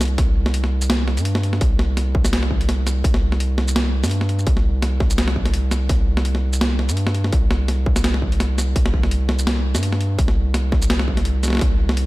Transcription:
Already playing: sub bass C2
0.01 snare, closed hi-hat, shaker
0.03 closed hi-hat
0.05 closed hi-hat
0.08 closed hi-hat
0.18 sub bass C2, kick, snare, closed hi-hat
0.46 snare
0.54 closed hi-hat
0.64 snare
0.81 shaker
0.90 snare, closed hi-hat
1.08 snare
1.17 sub bass G2, closed hi-hat, shaker
1.25 closed hi-hat
1.35 snare
1.43 closed hi-hat
1.53 snare
1.61 sub bass C2, kick, closed hi-hat
1.79 snare
1.97 snare, closed hi-hat
2.15 kick
2.25 snare, shaker
2.33 snare, closed hi-hat
2.43 snare
2.51 kick
2.61 closed hi-hat
2.69 snare, closed hi-hat
2.87 snare, closed hi-hat, shaker
3.04 sub bass C2, kick, closed hi-hat
3.14 snare
3.32 snare
3.40 closed hi-hat
3.58 snare
3.68 shaker
3.76 snare, closed hi-hat
4.03 sub bass G2, snare, closed hi-hat, shaker
4.06 closed hi-hat
4.08 closed hi-hat
4.10 closed hi-hat
4.11 closed hi-hat
4.21 snare
4.29 closed hi-hat
4.39 shaker
4.47 sub bass C2, kick, closed hi-hat
4.57 snare
4.82 snare, closed hi-hat
5.00 kick, snare
5.10 shaker
5.18 snare, closed hi-hat
5.28 snare
5.36 kick
5.46 snare, closed hi-hat
5.54 closed hi-hat
5.71 snare, closed hi-hat, shaker
5.89 sub bass C2, kick, snare, closed hi-hat
6.17 snare
6.25 closed hi-hat
6.35 snare
6.53 shaker
6.61 snare, closed hi-hat
6.79 snare
6.89 sub bass G2, closed hi-hat, shaker
6.97 closed hi-hat
7.07 snare
7.14 closed hi-hat
7.24 snare
7.33 sub bass C2, kick, closed hi-hat
7.51 snare
7.68 snare, closed hi-hat
7.86 kick
7.96 snare, shaker
8.04 snare, closed hi-hat
8.14 snare
8.22 kick
8.32 closed hi-hat
8.40 snare, closed hi-hat
8.58 snare, closed hi-hat, shaker
8.76 sub bass C2, kick, closed hi-hat
8.86 snare
8.94 kick
9.03 snare
9.11 closed hi-hat
9.29 snare
9.39 shaker
9.47 snare, closed hi-hat
9.75 sub bass G2, snare, closed hi-hat, shaker
9.83 closed hi-hat
9.93 snare
10.01 closed hi-hat
10.19 sub bass C2, kick, closed hi-hat
10.28 snare
10.54 snare, closed hi-hat
10.72 kick, snare
10.82 shaker
10.90 snare, closed hi-hat
10.99 snare
11.08 kick
11.17 snare, closed hi-hat
11.25 closed hi-hat
11.43 snare, closed hi-hat, shaker
11.45 snare
11.48 snare
11.50 snare
11.53 snare
11.55 snare
11.57 snare
11.59 snare
11.61 sub bass C2, kick, snare, closed hi-hat
11.89 snare
11.97 closed hi-hat

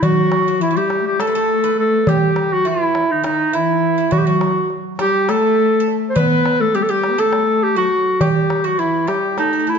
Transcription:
0.03 cello section F#3, bouzouki F#4, clarinet F#4, darbuka dum
0.32 darbuka tek
0.48 bouzouki F#4
0.61 cello section E3, bouzouki E4, clarinet E4, darbuka ka
0.71 bouzouki F#4
0.77 cello section G3, bouzouki E4, clarinet G4
0.90 darbuka tek
1.01 cello section G3 A3
1.07 clarinet G4
1.20 cello section A3, clarinet A4, bouzouki A4, darbuka tek
1.27 bouzouki B4
1.35 bouzouki A4
1.49 darbuka ka
1.64 bouzouki B4
1.78 cello section A3, clarinet A4
2.07 cello section G3, clarinet G4, bouzouki G4, darbuka dum
2.36 darbuka tek
2.51 cello section F#3, clarinet F#4
2.65 cello section E3, bouzouki E4, clarinet E4, darbuka ka
2.95 darbuka tek
3.06 cello section D#3 E3
3.11 clarinet D#4
3.23 cello section D#3, bouzouki D#4, clarinet D#4, darbuka tek
3.53 cello section E3, bouzouki E4, clarinet E4, darbuka ka
3.83 darbuka ka
3.98 bouzouki E4
4.11 cello section F#3, bouzouki F#4, clarinet F#4, darbuka dum
4.19 clarinet G4
4.26 cello section F#3, clarinet F#4, bouzouki F#4
4.41 darbuka tek
4.70 darbuka ka
4.99 cello section G3, bouzouki G4, clarinet G4, darbuka tek
5.29 cello section A3, bouzouki A4, clarinet A4, darbuka tek
5.58 darbuka ka
5.80 bouzouki A4
5.88 darbuka ka
6.09 clarinet C5
6.16 cello section B3, bouzouki B4, clarinet B4, darbuka dum
6.46 darbuka tek
6.60 cello section A3, clarinet A4
6.75 cello section G3, bouzouki G4, clarinet G4, darbuka ka
6.82 clarinet A4
6.89 cello section G3, bouzouki G4, clarinet G4
7.04 darbuka tek
7.11 cello section B3
7.18 cello section A3, bouzouki A4, clarinet A4
7.33 darbuka tek
7.63 clarinet G4, darbuka ka
7.76 cello section F#3, bouzouki F#4, clarinet F#4
7.92 darbuka ka
8.21 cello section G3, bouzouki G4, clarinet G4, darbuka dum
8.50 darbuka tek
8.64 cello section F#3, bouzouki F#4, clarinet F#4
8.79 cello section E3, bouzouki E4, clarinet E4
9.07 cello section G3, bouzouki G4, clarinet G4, darbuka tek
9.37 cello section A3, clarinet D#4, bouzouki A4, darbuka tek
9.51 cello section A3, bouzouki A4
9.60 bouzouki A4
9.67 clarinet E4, bouzouki A4, darbuka ka
9.75 bouzouki A4

